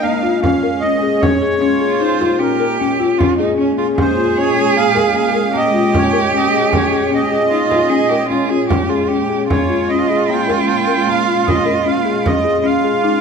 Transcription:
Already playing: ambient pad A#2 G#3 C#4, cello D#4
0.02 marimba A#3, accordion F5, frame drum
0.23 marimba F4, frame drum
0.42 cello C#4, marimba C#4, accordion F5, frame drum
0.63 marimba A#4
0.80 marimba C#4, accordion D#5
1.02 marimba G#4
1.20 marimba C#4, accordion C#5, frame drum
1.42 marimba G#4, frame drum
1.61 marimba C#4, cello F4
1.81 marimba G#4
2.00 marimba D#4, accordion C5
2.20 marimba F4, frame drum
2.39 marimba C#4, cello G4, accordion A#4
2.60 marimba A#4
2.80 marimba C#4, frame drum
3.00 marimba F4, frame drum
3.18 marimba C#4, cello F4, frame drum
3.38 cello D#4, marimba G#4
3.57 cello C#4, marimba C#4
3.78 cello F4, marimba G#4
3.97 marimba C#4, cello G#4, accordion C5, frame drum
4.17 marimba F4, frame drum
4.37 marimba C#4, accordion C#5
4.57 marimba G#4
4.76 marimba A#3, accordion F5
4.95 marimba A#4, frame drum
5.15 marimba A#3, accordion F5
5.34 marimba A#4
5.53 marimba A#3, cello G4, accordion D#5, frame drum
5.74 marimba F4, frame drum
5.93 marimba C#4, accordion C#5, frame drum
6.13 marimba A#4
6.33 marimba C#4, accordion D#5
6.53 marimba G#4
6.72 marimba C#4, accordion C#5, frame drum
6.92 marimba G#4, frame drum
7.11 marimba C#4, accordion D#5, frame drum
7.31 marimba G#4, frame drum
7.50 marimba D#4, cello F4
7.71 marimba F4, frame drum
7.89 marimba C#4, cello G#4
8.09 cello G4, marimba A#4
8.29 marimba C#4, cello F4, frame drum
8.50 marimba F4, cello G#4
8.69 marimba C#4, cello G4, frame drum
8.89 cello F4, marimba G#4, frame drum
9.09 marimba C#4, cello G4
9.30 marimba G#4
9.49 marimba C#4, cello F4, accordion C#5, frame drum
9.69 marimba F4, frame drum
9.89 marimba C#4, accordion D#5
10.10 marimba G#4
10.29 marimba A#3, accordion G5
10.48 marimba A#4, frame drum
10.68 marimba A#3, accordion G5
10.87 marimba A#4
11.07 marimba A#3, accordion F5, frame drum
11.27 marimba F4
11.45 marimba C#4, accordion D#5, frame drum
11.65 marimba A#4
11.85 marimba C#4, accordion F5
12.05 marimba G#4
12.25 marimba C#4, accordion D#5, frame drum
12.44 marimba G#4, frame drum
12.63 marimba C#4, cello F4, accordion F5
12.84 marimba G#4
13.03 marimba D#4

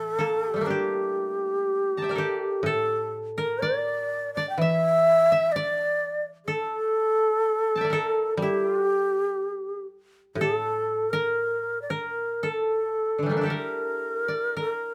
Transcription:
Already playing: koto A2 E3 A3 A4, shakuhachi A4
0.19 koto A#3 A4
0.49 koto G4
0.54 koto G3 A3
0.61 koto A#3
0.66 koto D4 E4 G4, shakuhachi G4
1.97 koto A5 A#5
2.02 koto E5 G5
2.09 koto A#4 D5
2.16 koto G4 A4
2.63 koto A2 A4, shakuhachi A4
3.38 koto A#4, shakuhachi A#4
3.61 shakuhachi D5, koto D5
4.34 shakuhachi D5, koto D5
4.49 shakuhachi G5
4.58 koto E3 E5, shakuhachi E5
5.32 koto E5
5.52 shakuhachi D5, koto D5
6.46 shakuhachi A4, koto A4
7.76 koto G5 A5
7.81 koto D5 E5
7.90 koto A4 A#4
8.37 koto G3, shakuhachi G4
8.42 koto E4
8.65 koto F4
8.87 koto G4
10.35 koto A2, shakuhachi G4
10.41 koto A4
10.56 shakuhachi A4
11.10 shakuhachi A#4, koto A#4
11.82 shakuhachi D5
11.90 koto A#4, shakuhachi A#4
12.43 koto A4, shakuhachi A4
13.19 koto D3
13.23 koto E3 G3
13.29 koto A3 A#3
13.37 koto D4
13.41 koto E4 G4
13.46 koto A4
13.50 koto A#4, shakuhachi A#4
14.28 koto D5
14.57 koto A#4, shakuhachi A#4

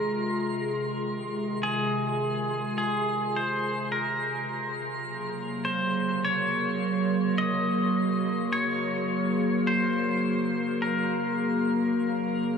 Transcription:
Already playing: ambient pad C3 D#3 G#3 F4 G#4, pedal steel guitar A#4, synth texture C6
1.63 pedal steel guitar G#4
2.78 pedal steel guitar G#4
3.36 pedal steel guitar C5
3.92 pedal steel guitar A#4
3.97 ambient pad C#3
4.95 ambient pad F#3
5.01 ambient pad A#3
5.40 ambient pad F#4
5.65 pedal steel guitar C5
5.74 ambient pad A#4
6.25 pedal steel guitar C#5
7.38 pedal steel guitar D#5
8.53 pedal steel guitar C#5
9.67 pedal steel guitar C5
10.82 pedal steel guitar A#4

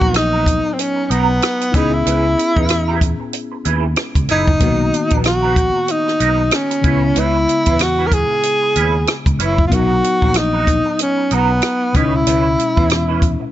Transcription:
Already playing: tine electric piano F#3 B3 D#4 A#4, tenor saxophone F#4
0.01 fingered electric bass A#1, clean electric guitar B3 D#4 A#4, kick
0.14 tenor saxophone D#4, muted clean electric guitar stroke, cross-stick, closed hi-hat
0.33 clean electric guitar B3 D#4 A#4
0.46 muted clean electric guitar stroke, kick, closed hi-hat
0.65 muted clean electric guitar stroke
0.73 tenor saxophone C4
0.79 tenor saxophone C#4, closed hi-hat
0.96 muted clean electric guitar stroke
1.06 clean electric guitar B3, tenor saxophone C#4
1.10 fingered electric bass B1, tenor saxophone B3, clean electric guitar D#4 A#4, closed hi-hat
1.28 muted clean electric guitar stroke
1.41 muted clean electric guitar stroke, cross-stick, closed hi-hat
1.60 muted clean electric guitar stroke, closed hi-hat
1.72 fingered electric bass C#2, tine electric piano B3 C#4 E4, tenor saxophone D#4, clean electric guitar E4 G#4 B4, kick, cross-stick, closed hi-hat
1.77 tine electric piano G#4
1.92 tenor saxophone E4, muted clean electric guitar stroke
2.05 fingered electric bass C#2, clean electric guitar E4 G#4 B4, closed hi-hat
2.37 muted clean electric guitar stroke, closed hi-hat
2.56 fingered electric bass E2, clean electric guitar E4 G#4 B4, kick
2.69 muted clean electric guitar stroke, cross-stick, closed hi-hat
2.88 clean electric guitar E4 G#4 B4
3.01 muted clean electric guitar stroke, kick, closed hi-hat
3.20 muted clean electric guitar stroke
3.33 closed hi-hat
3.52 muted clean electric guitar stroke
3.65 fingered electric bass D#2, clean electric guitar E4 G#4 B4, closed hi-hat
3.84 muted clean electric guitar stroke
3.96 muted clean electric guitar stroke, cross-stick, closed hi-hat
4.15 fingered electric bass C#2, muted clean electric guitar stroke, kick, closed hi-hat
4.29 fingered electric bass F#1, tenor saxophone D#4, clean electric guitar E4 G#4 B4, closed hi-hat
4.47 muted clean electric guitar stroke, kick
4.59 fingered electric bass B1, tine electric piano C#3 A#3 B3, clean electric guitar B3 D#4 A#4, kick, closed hi-hat
4.63 tine electric piano D#3 F#4
4.93 muted clean electric guitar stroke, closed hi-hat
5.10 fingered electric bass A#1, clean electric guitar B3 D#4 A#4, kick, closed hi-hat
5.24 tenor saxophone F#4, muted clean electric guitar stroke, cross-stick, closed hi-hat
5.42 clean electric guitar B3 D#4 A#4
5.56 muted clean electric guitar stroke, kick, closed hi-hat
5.75 muted clean electric guitar stroke
5.88 tenor saxophone D#4, closed hi-hat
6.06 muted clean electric guitar stroke, cross-stick
6.20 fingered electric bass B1, clean electric guitar B3 D#4 A#4, closed hi-hat
6.38 muted clean electric guitar stroke
6.51 tenor saxophone C#4, muted clean electric guitar stroke, cross-stick, closed hi-hat
6.70 muted clean electric guitar stroke, closed hi-hat
6.82 fingered electric bass C#2, tine electric piano C#3 G#3 B3, clean electric guitar C#4 E4 B4, kick, closed hi-hat
6.87 tine electric piano E4
7.03 muted clean electric guitar stroke
7.16 fingered electric bass C#2, clean electric guitar C#4 E4 B4, tenor saxophone E4, closed hi-hat
7.48 muted clean electric guitar stroke, closed hi-hat
7.66 fingered electric bass E2, clean electric guitar C#4 E4 B4, kick, closed hi-hat
7.79 tenor saxophone F#4, muted clean electric guitar stroke, cross-stick, closed hi-hat
7.99 clean electric guitar C#4 E4 B4
8.07 tenor saxophone A#4
8.12 tenor saxophone G#4, muted clean electric guitar stroke, kick, closed hi-hat
8.31 muted clean electric guitar stroke
8.43 closed hi-hat
8.63 muted clean electric guitar stroke
8.76 fingered electric bass D#2, clean electric guitar C#4 E4 B4, closed hi-hat
8.94 muted clean electric guitar stroke
9.07 muted clean electric guitar stroke, cross-stick, closed hi-hat
9.26 fingered electric bass C#2, muted clean electric guitar stroke, kick, closed hi-hat
9.39 fingered electric bass F#1, clean electric guitar C#4 E4 B4, tenor saxophone E4, closed hi-hat
9.58 muted clean electric guitar stroke, kick
9.67 tine electric piano B3, clean electric guitar D#4, tenor saxophone F4
9.71 fingered electric bass B1, tine electric piano F#3 D#4 A#4, clean electric guitar F#4 A#4, tenor saxophone F#4, kick, closed hi-hat
10.03 muted clean electric guitar stroke, closed hi-hat
10.22 fingered electric bass A#1, clean electric guitar D#4 F#4 A#4, kick
10.34 tenor saxophone D#4, muted clean electric guitar stroke, cross-stick, closed hi-hat
10.53 clean electric guitar D#4 F#4 A#4
10.67 muted clean electric guitar stroke, kick, closed hi-hat
10.86 muted clean electric guitar stroke
10.99 tenor saxophone C#4, closed hi-hat
11.18 muted clean electric guitar stroke
11.31 fingered electric bass B1, tenor saxophone B3, clean electric guitar D#4 F#4 A#4, closed hi-hat
11.50 muted clean electric guitar stroke
11.62 muted clean electric guitar stroke, cross-stick, closed hi-hat
11.82 muted clean electric guitar stroke
11.93 fingered electric bass C#2, tine electric piano B2 D#3 G#3, clean electric guitar C#4 E4 B4, tenor saxophone D#4, kick, cross-stick, closed hi-hat
11.98 tine electric piano C#4 E4
12.14 tenor saxophone E4, muted clean electric guitar stroke
12.27 fingered electric bass C#2, clean electric guitar C#4 E4 B4, closed hi-hat
12.58 muted clean electric guitar stroke, closed hi-hat
12.77 fingered electric bass E2, clean electric guitar C#4 E4 B4, kick
12.89 muted clean electric guitar stroke, cross-stick, closed hi-hat
13.08 clean electric guitar C#4 E4 B4
13.21 muted clean electric guitar stroke, kick, closed hi-hat
13.40 muted clean electric guitar stroke

